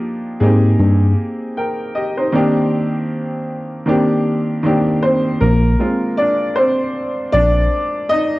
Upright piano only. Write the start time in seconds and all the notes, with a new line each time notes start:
Already playing: F3 A#3 D4 D#4 G4
0.40 A#3 C4 D#4 G4 G#4
1.57 A#4 G5
1.95 G4 D#5
2.17 D#4 C5
2.32 D#3 A#3 C4 D4 G4
3.86 D#3 A#3 C4 D4 G4
4.63 D#3 A#3 C4 D4 G4
5.03 C4 C5
5.41 A#3 A#4
5.79 G#3 C4 F4
6.17 D4 D5
6.56 C4 C5
7.32 D4 D5
8.09 D#4 D#5